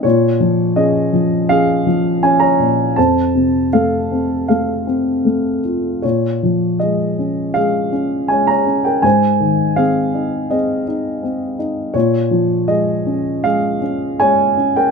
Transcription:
<<
  \new Staff \with { instrumentName = "Grand piano" } { \time 4/4 \key bes \minor \tempo 4 = 80 <f' des''>4 <aes' ees''>4 <aes' f''>4 <des'' aes''>16 <des'' bes''>8. | <c'' a''>4 <a' f''>4 <a' f''>4. r8 | <f' des''>4 <aes' ees''>4 <aes' f''>4 <des'' aes''>16 <des'' bes''>8 <bes' g''>16 | <c'' aes''>4 <aes' f''>4 <aes' ees''>4. r8 |
<f' des''>4 <aes' ees''>4 <aes' f''>4 <des'' aes''>8. <bes' g''>16 | }
  \new Staff \with { instrumentName = "Grand piano" } { \time 4/4 \key bes \minor bes,8 f8 des'8 f8 des'8 f8 des'8 bes,8 | f,8 c8 a8 c'8 a8 c'8 a8 f'8 | bes,8 f8 aes8 des'8 aes8 des'8 aes8 des'8 | aes,8 ees8 c'8 ees'8 c'8 ees'8 c'8 ees'8 |
bes,8 f8 aes8 des'8 aes8 des'8 aes8 des'8 | }
>>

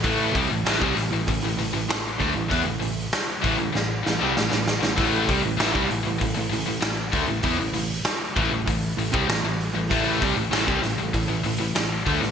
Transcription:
<<
  \new Staff \with { instrumentName = "Distorted electric guitar" } { \clef bass \time 4/4 \key a \minor \tempo 4 = 97 <a, e a>8 <c g>16 <a, e>16 <a, e>16 <c g>16 <a, e>16 <a, e>16 <a, e>16 <a, e>16 <a, e>16 <a, e>16 <a, e>8 <d a>16 <a, e>16 | <e b>16 <a, e>16 <a, e>8 r8 <a, e>16 <a, e>16 <a, e>8 <a, e>16 <c g>16 <a, e>16 <a, e>8 <a, e>16 | <a, e a>8 <c g>16 <a, e>16 <a, e>16 <c g>16 <a, e>16 <a, e>16 <a, e>16 <a, e>16 <a, e>16 <a, e>16 <a, e>8 <d a>16 <a, e>16 | <e b>16 <a, e>16 <a, e>8 r8 <a, e>16 <a, e>16 <a, e>8 <a, e>16 <c g>16 <a, e>16 <a, e>8 <a, e>16 |
<a, e a>8 <c g>16 <a, e>16 <a, e>16 <c g>16 <a, e>16 <a, e>16 <a, e>16 <a, e>16 <a, e>16 <a, e>16 <a, e>8 <d a>16 <a, e>16 | }
  \new Staff \with { instrumentName = "Overdriven electric guitar" } { \clef bass \time 4/4 \key a \minor <a, e a>8 <c g>16 <a, e>16 <a, e>16 <c g>16 <a, e>16 <a, e>16 <a, e>16 <a, e>16 <a, e>16 <a, e>16 <a, e>8 <d a>16 <a, e>16 | <e b>16 <a, e>16 <a, e>8 r8 <a, e>16 <a, e>16 <a, e>8 <a, e>16 <c g>16 <a, e>16 <a, e>8 <a, e>16 | <a, e a>8 <c g>16 <a, e>16 <a, e>16 <c g>16 <a, e>16 <a, e>16 <a, e>16 <a, e>16 <a, e>16 <a, e>16 <a, e>8 <d a>16 <a, e>16 | <e b>16 <a, e>16 <a, e>8 r8 <a, e>16 <a, e>16 <a, e>8 <a, e>16 <c g>16 <a, e>16 <a, e>8 <a, e>16 |
<a, e a>8 <c g>16 <a, e>16 <a, e>16 <c g>16 <a, e>16 <a, e>16 <a, e>16 <a, e>16 <a, e>16 <a, e>16 <a, e>8 <d a>16 <a, e>16 | }
  \new Staff \with { instrumentName = "Overdriven electric guitar" } { \clef bass \time 4/4 \key a \minor <a, e a>8 <c g>16 <a, e>16 <a, e>16 <c g>16 <a, e>16 <a, e>16 <a, e>16 <a, e>16 <a, e>16 <a, e>16 <a, e>8 <d a>16 <a, e>16 | <e b>16 <a, e>16 <a, e>8 r8 <a, e>16 <a, e>16 <a, e>8 <a, e>16 <c g>16 <a, e>16 <a, e>8 <a, e>16 | <a, e a>8 <c g>16 <a, e>16 <a, e>16 <c g>16 <a, e>16 <a, e>16 <a, e>16 <a, e>16 <a, e>16 <a, e>16 <a, e>8 <d a>16 <a, e>16 | <e b>16 <a, e>16 <a, e>8 r8 <a, e>16 <a, e>16 <a, e>8 <a, e>16 <c g>16 <a, e>16 <a, e>8 <a, e>16 |
<a, e a>8 <c g>16 <a, e>16 <a, e>16 <c g>16 <a, e>16 <a, e>16 <a, e>16 <a, e>16 <a, e>16 <a, e>16 <a, e>8 <d a>16 <a, e>16 | }
  \new Staff \with { instrumentName = "Picked electric bass" } { \clef bass \time 4/4 \key a \minor a,,8 c,16 a,,16 a,,16 c,16 a,,16 a,,16 a,,16 a,,16 a,,16 a,,16 a,,8 d,16 a,,16 | e,16 a,,16 a,,8 r8 a,,16 r16 a,,8 a,,16 c,16 a,,16 a,,8 a,,16 | a,,8 c,16 a,,16 a,,16 c,16 a,,16 a,,16 a,,16 a,,16 a,,16 a,,16 a,,8 d,16 a,,16 | e,16 a,,16 a,,8 r8 a,,16 a,,16 a,,8 a,,16 c,16 a,,16 a,,8 a,,16 |
a,,8 c,16 a,,16 a,,16 c,16 a,,16 a,,16 a,,16 a,,16 a,,16 a,,16 a,,8 d,16 a,,16 | }
  \new DrumStaff \with { instrumentName = "Drums" } \drummode { \time 4/4 <hho bd>8 <hho bd>8 <hho sn>16 bd16 <hho sn>8 <hho bd>8 hho8 <hho sn>8 <hho bd>8 | <hho bd>8 hho8 <hho sn>8 <hho bd>8 sn8 sn8 sn16 sn16 sn16 sn16 | <hho bd>8 <hho bd>8 <hho sn>16 bd16 hho8 <hho bd>8 hho8 <hho sn>8 <hho bd>8 | <hho bd>8 hho8 <hho sn>8 <hho bd>8 <hho bd>8 hho16 bd16 <hho sn>8 hho8 |
<hho bd>8 <hho bd>8 <hho sn>16 bd16 <hho sn>8 <hho bd>8 hho8 <hho sn>8 <hho bd>16 sn16 | }
>>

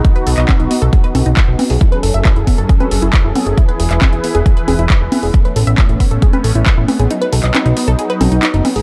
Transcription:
<<
  \new Staff \with { instrumentName = "Synth arpeggio sound" } { \time 4/4 \key b \mixolydian \tempo 4 = 136 dis'16 b'16 a'16 dis''16 dis'16 dis'16 b16 a'16 gis'16 b'16 a'16 dis'16 dis'16 dis'16 b16 gis'16 | e'16 b'16 a'16 e''16 e'16 e'16 b16 a'16 gis'16 b'16 a'16 e'16 e'16 e'16 b16 gis'16 | e'16 b'16 gis'16 e''16 e'16 e'16 b16 gis'16 gis'16 b'16 gis'16 e'16 e'16 e'16 b16 gis'16 | e'16 b'16 a'16 e''16 e'16 e'16 b16 a'16 gis'16 b'16 a'16 e'16 e'16 e'16 b16 gis'16 |
dis'16 b'16 a'16 dis''16 dis'16 dis'16 b16 a'16 gis'16 b'16 a'16 dis'16 dis'16 dis'16 b16 gis'16 | }
  \new Staff \with { instrumentName = "Supersaw synth" } { \time 4/4 \key b \mixolydian << { <b fis'>1 | <fis cis' a'>1 | <e e' b'>1 | <a cis'>1 |
<fis dis'>1 | } \\ { dis'1 | gis'1~ | gis'1 | b1~ |
b1 | } >> }
  \new Staff \with { instrumentName = "Analog synth bass" } { \clef bass \time 4/4 \key b \mixolydian r8 b,,16 b,,16 r16 b,,16 r16 b,,16 r8 b,,16 b,,16 r16 b,,16 r16 b,,16 | r8 fis,,16 fis,,16 r16 fis,,16 r16 fis,,16 r8 fis,,16 fis,,16 r16 fis,,16 r16 fis,,16 | r8 e,,16 e,,16 r16 e,,16 r16 e,,16 r8 e,,16 e,,16 r16 e,,16 r16 e,,16 | r8 a,,16 a,,16 r16 a,,16 r16 a,,16 r8 a,,16 a,,16 r16 a,,16 r16 a,,16 |
r8 b,,16 b,,16 r16 b,,16 r16 b,,16 r8 b,,16 b,,16 r16 fis,,16 r16 a,,16 | }
  \new DrumStaff \with { instrumentName = "Drums" } \drummode { \time 4/4 <hh bd>16 hh16 hho16 <hc hh>16 <hc cgho hh bd>16 hh16 hho16 hh16 <hh bd>16 hh16 <cgho hho>16 hh16 <hc hh bd>8 <cgho hho>16 hho16 | bd16 hh16 hho16 hh16 <hc hh bd>16 hh16 <hho bd>16 hh16 <hh bd>16 <cgho hh>16 hho16 hh16 <hc hh bd>8 <cgho hho>16 hh16 | <hh bd>16 hh16 hho16 <hc hh>16 <hc cgho hh bd>16 hh16 hho16 hh16 <hh bd>16 hh16 <cgho hho>16 hh16 <hc hh bd>8 <cgho hho>16 hho16 | <hh bd>16 hh16 hho16 hh16 <hc hh bd>16 hh16 <hho bd>16 hh16 <hh bd>16 <cgho hh>16 hho16 hh16 <hc hh bd>8 <cgho hho>16 hh16 |
hh16 hh16 hho16 hc16 <hc cgho hh>16 hh16 hho16 hh16 hh16 hh16 <cgho hho>16 hh16 <hc hh>16 hh16 <cgho hho>16 hho16 | }
>>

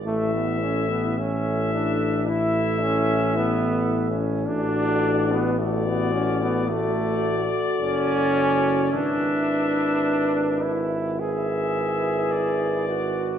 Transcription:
<<
  \new Staff \with { instrumentName = "Cornet" } { \time 4/4 \key a \major \tempo 4 = 54 e''4 e''4 e''4.~ e''16 r16 | d''4 d''4 d''2 | e''4.~ e''16 r16 e''4 d''4 | }
  \new Staff \with { instrumentName = "French horn section" } { \time 4/4 \key a \major a'4 a'4 a'2 | a'4 a'4 a'2 | b'2 b'2 | }
  \new Staff \with { instrumentName = "Euphonium" } { \time 4/4 \key a \major e'4 e'4 e'4.~ e'16 r16 | fis'4 fis'4 fis'2 | e'4.~ e'16 r16 e'2 | }
  \new Staff \with { instrumentName = "Trombone" } { \time 4/4 \key a \major a16 b16 cis'16 b16 cis'8 d'8 e'8 cis'8 \tuplet 3/2 { b4 cis'8 } | d'8. b16 a16 b16 cis'16 b16 a8. r16 cis'4 | d'4. e'8 gis'4. fis'8 | }
  \new Staff \with { instrumentName = "Tuba" } { \clef bass \time 4/4 \key a \major a,,1 | a,,2~ a,,8. r16 fis,,4 | gis,,1 | }
>>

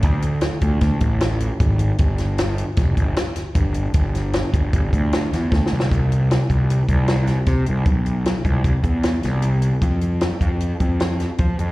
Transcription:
<<
  \new Staff \with { instrumentName = "Picked electric bass" } { \clef bass \time 5/4 \key g \mixolydian \tempo 4 = 153 d,4. d,8 d,8 a,,4. aes,,4 | g,,2 f,,8 g,,8 r4 g,,4 | g,,4. g,,8 g,,8 d,4 e,8 d,8 c,8 | c,4. c,4 c,4. c8 c,8 |
b,,4. c,8 c,16 r16 e,4 c,4. | f,4. f,4 f,4. f8 f,8 | }
  \new DrumStaff \with { instrumentName = "Drums" } \drummode { \time 5/4 <hh bd>8 hh8 <hh sn>8 <hh bd>8 <hh bd sn>8 <hh bd>8 <hh sn>8 hh8 <hh bd>8 hh8 | <hh bd>8 <hh sn>8 <hh sn>8 hh8 <hh bd sn>8 <hh bd>8 <hh sn>8 <hh sn>8 <hh bd>8 hh8 | <hh bd>8 <hh sn>8 <hh sn>8 <hh bd>8 <hh bd>8 <hh bd>8 <hh sn>8 <hh sn>8 \tuplet 3/2 { <bd sn>8 sn8 sn8 } | <hh bd>8 hh8 <hh sn>8 <hh bd>8 hh8 <hh bd>8 <hh sn>8 <hh sn>8 <hh bd sn>8 hh8 |
<hh bd>8 hh8 <hh sn>8 <hh bd>8 <hh bd>8 <hh bd>8 <hh sn>8 <hh sn>8 hh8 hh8 | <hh bd>8 hh8 <hh sn>8 <hh bd>8 hh8 <hh bd>8 <hh sn>8 <hh sn>8 <hh bd>8 hh8 | }
>>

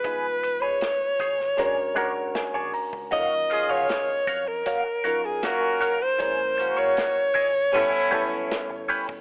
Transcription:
<<
  \new Staff \with { instrumentName = "Alto saxophone" } { \time 4/4 \key dis \minor \tempo 4 = 78 b'8. cis''2~ cis''8. r8 | dis''8. cis''4 ais'4 gis'16 ais'8. bis'16~ | bis'8. cis''2~ cis''8. r8 | }
  \new Staff \with { instrumentName = "Clean electric guitar" } { \time 4/4 \key dis \minor <ees' aes' ces''>16 r8 <ees' aes' ces''>16 r8 <ees' aes' cis''>16 r16 <d' gis' cis''>16 r16 <d' gis' cis''>16 r8 <d' gis' cis''>16 r8 | <fis' cis'' eis''>16 r8 <fis' cis'' eis''>16 r8 <fis' cis'' eis''>16 r16 <fis' cis'' eis''>16 r16 <fis' cis'' eis''>16 r8. <fis' cis'' eis''>16 r16 | <e' gis' cis''>16 r8 <e' gis' cis''>16 r8 <e' gis' dis''>16 r16 <cis' g' b'>16 r16 <cis' g' b'>16 r8. <cis' g' b'>16 r16 | }
  \new Staff \with { instrumentName = "Reed electric piano" } { \time 4/4 \key dis \minor << { r2 r8 fis''8 gis''8 ais''8 | r1 | r1 | } \\ { <g aes ces' ees' f' ces''>2 <gis cis' d' fis' ais'>8 <gis cis' d' fis' ais'>4. | <fis cis' dis' eis' a' ais'>2 r8 <fis cis' dis' eis' ais'>4. | <gis ais bis cis' e' ais'>2 <g b cis' e' a'>8 <g b cis' e' a'>4. | } >> }
  \new Staff \with { instrumentName = "Horn section" } { \time 4/4 \key dis \minor r1 | r8 <cis' eis' gis'>4 r4. <ais cis' fis'>8. r16 | r8 <ais cis' fis'>4 r8 <b cis' e'>4. r8 | }
  \new Staff \with { instrumentName = "Fingered electric bass" } { \clef bass \time 4/4 \key dis \minor f,,4 r8 aes,,8 ais,,16 r16 fis,,8 r16 ais,,16 r16 cis,16 | dis,8 r16 fis,16 r8 eis,8 r2 | ais,,8. r8. gis,,8 a,,16 r16 b,,8 r16 g,,16 r16 e,,16 | }
  \new DrumStaff \with { instrumentName = "Drums" } \drummode { \time 4/4 <hh bd>8 hh8 <hh sn>8 <hh bd>16 sn16 hh8 <hh bd>8 <hh sn>8 hho16 bd16 | <hh bd>8 hh8 <hh sn>8 <hh bd>8 <hh bd>8 hh8 <hh sn>8 hh8 | <hh bd>8 hh8 <hh sn>8 <hho bd>8 hh8 <hh bd>8 <hh sn>8 hho16 bd16 | }
>>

